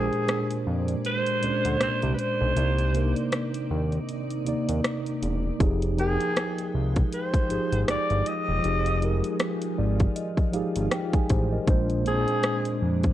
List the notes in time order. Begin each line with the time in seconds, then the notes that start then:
Already playing: A#1 A#2 G#3 A#3 D4 G4 G#4 A#4 C5 D5
0.13 closed hi-hat
0.28 cross-stick, closed hi-hat
0.51 closed hi-hat
0.67 F2
0.88 closed hi-hat
1.05 C5, closed hi-hat
1.26 closed hi-hat
1.41 D2 A#2 G#3 C#4 C5, closed hi-hat
1.50 D4
1.65 D2, closed hi-hat
1.81 C2 C5, cross-stick, closed hi-hat
2.02 C2, closed hi-hat
2.14 B4
2.19 C5, closed hi-hat
2.41 B1
2.55 C2 C3 A#3 D#4 D5, closed hi-hat
2.78 closed hi-hat
2.93 C3 A#3 D4 A#4, closed hi-hat
3.02 D#4
3.16 closed hi-hat
3.32 cross-stick, closed hi-hat
3.54 closed hi-hat
3.71 D#2
3.92 closed hi-hat
4.09 closed hi-hat
4.30 closed hi-hat
4.45 D#2 C3 A#3 D#4 D5, closed hi-hat
4.69 D#2, closed hi-hat
4.84 cross-stick, closed hi-hat
5.07 closed hi-hat
5.23 E1, closed hi-hat
5.59 F1 F3 G#3 D#4 G4 G#4 G5, kick, closed hi-hat
5.82 closed hi-hat
5.97 F3 D#4 G#4 A#4 G5, closed hi-hat
6.20 closed hi-hat
6.36 cross-stick, closed hi-hat
6.58 closed hi-hat
6.75 C2
6.96 kick, closed hi-hat
7.13 C5, closed hi-hat
7.34 kick, closed hi-hat
7.49 G#1 F3 D#4 G4 G#4, closed hi-hat
7.72 G#1, closed hi-hat
7.88 G1 D5, cross-stick, closed hi-hat
8.10 G1, closed hi-hat
8.26 D#5, closed hi-hat
8.49 E1
8.62 F1 F3 D#4 F4 G4 G#4, closed hi-hat
8.86 closed hi-hat
9.00 F3 D#4 G4 A#4, closed hi-hat
9.24 closed hi-hat
9.39 cross-stick, closed hi-hat
9.62 closed hi-hat
9.78 G#1 D5
10.00 kick, closed hi-hat
10.16 D#5, closed hi-hat
10.37 kick, closed hi-hat
10.52 G#1 F3 D#4 G4 G#4 F5, closed hi-hat
10.76 G#1, closed hi-hat
10.91 G5, cross-stick, closed hi-hat
11.13 D#4 G#4 G#5, kick, closed hi-hat
11.30 A1 G4 C5, kick, closed hi-hat
11.52 A#4 D#5
11.66 A#1 A#2 G#3 A#3 D4 C5, kick, closed hi-hat
11.89 closed hi-hat
12.04 A#2 G#3 C4 G#4 C5, closed hi-hat
12.13 D4
12.28 closed hi-hat
12.43 cross-stick, closed hi-hat
12.65 closed hi-hat
12.82 F2
13.03 kick, closed hi-hat